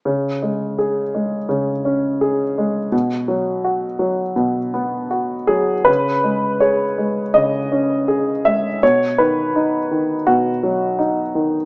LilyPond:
<<
  \new Staff \with { instrumentName = "Grand piano" } { \time 4/4 \key b \mixolydian \tempo 4 = 82 r1 | r2. r8 gis'8 | b'4 cis''4 dis''4. e''8 | cis''8 b'4. fis'4 r4 | }
  \new Staff \with { instrumentName = "Grand piano" } { \clef bass \time 4/4 \key b \mixolydian cis8 gis8 gis'8 gis8 cis8 cis'8 gis'8 gis8 | b,8 fis8 fis'8 fis8 b,8 b8 fis'8 fis8 | cis8 gis8 gis'8 gis8 cis8 cis'8 gis'8 gis8 | b,8 dis8 dis'8 dis8 b,8 fis8 dis'8 dis8 | }
>>